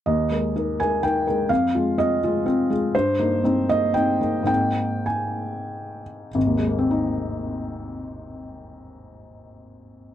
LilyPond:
\new Staff \with { instrumentName = "Felt piano" } { \time 3/4 \key aes \major \tempo 4 = 106 << { ees''4. aes''8 g''4 | f''4 ees''4. r8 | c''4. ees''8 g''4 | g''4 aes''4. r8 |
<aes,, ees, aes bes c' ees'>2.~ | <aes,, ees, aes bes c' ees'>2. | } \\ { ees,8 <aes bes'>8 <ees' bes'>8 <aes bes'>8 <ees' bes'>8 <aes bes'>8 | f,8 <aes f'>8 <c' f'>8 <aes f'>8 <c' f'>8 <aes f'>8 | g,8 <bes ees'>8 <c' ees'>8 <bes ees'>8 <c' ees'>8 <bes ees'>8 | <aes, bes c' ees'>2. |
r2. | r2. | } >> }